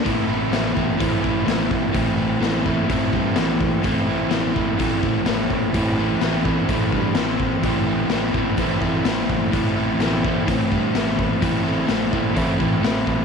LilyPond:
<<
  \new Staff \with { instrumentName = "Overdriven electric guitar" } { \time 4/4 \key a \minor \tempo 4 = 127 <a, e a c' e'>8 <a c' e'>8 <e a c' e'>8 <a c' e'>8 <a, e a c' e'>8 <a c' e'>8 <e a c' e'>4 | <a, e a c' e'>8 <a c' e'>8 <e a c' e'>8 <a c' e'>8 <a, e a c' e'>8 <a c' e'>8 <e a c' e'>4 | <a, e a c' e'>8 <a c' e'>8 <e a c' e'>8 <a c' e'>8 <a, e a c' e'>8 <a c' e'>8 <e a c' e'>4 | <a, e a c' e'>8 <a c' e'>8 <e a c' e'>8 <a c' e'>8 <a, e a c' e'>8 <a c' e'>8 <e a c' e'>4 |
<a, e a c' e'>8 <a c' e'>8 <e a c' e'>8 <a c' e'>8 <a, e a c' e'>8 <a c' e'>8 <e a c' e'>4 | <a, e a c' e'>8 <a c' e'>8 <e a c' e'>8 <a c' e'>8 <a, e a c' e'>8 <a c' e'>8 <e a c' e'>4 | <a, e a c' e'>8 <a c' e'>8 <e a c' e'>8 <a c' e'>8 <a, e a c' e'>8 <a c' e'>8 <e a c' e'>4 | }
  \new Staff \with { instrumentName = "Fingered electric bass" } { \clef bass \time 4/4 \key a \minor a,,4 a,,8 a,,8 a,,8 a,,8 a,,8 a,,8 | a,,4 a,,4 a,,8 g,8 a,,4 | a,,4 a,,8 a,,8 a,,8 a,,8 a,,8 a,,8 | a,,4 a,,4 a,,8 g,8 a,,4 |
a,,4 a,,8 a,,8 a,,8 a,,8 a,,8 a,,8 | a,,4 a,,4 a,,8 g,8 a,,4 | a,,4 a,,8 a,,8 a,,8 a,,8 a,,8 a,,8 | }
  \new DrumStaff \with { instrumentName = "Drums" } \drummode { \time 4/4 <hho bd>4 <hho sn>8 bd8 <hho bd>8 bd8 <hho sn>8 bd8 | <hho bd>4 <hho sn>8 bd8 <hho bd>8 bd8 <hho sn>8 bd8 | <hho bd>4 <hho sn>8 bd8 <hho bd>8 bd8 <hho sn>8 bd8 | <hho bd>4 <hho sn>8 bd8 <hho bd>8 bd8 <hho sn>8 bd8 |
<hho bd>4 <hho sn>8 bd8 <hho bd>8 bd8 <hho sn>8 bd8 | <hho bd>4 <hho sn>8 bd8 <hho bd>8 bd8 <hho sn>8 bd8 | <hho bd>4 <hho sn>8 bd8 <hho bd>8 bd8 <hho sn>8 bd8 | }
>>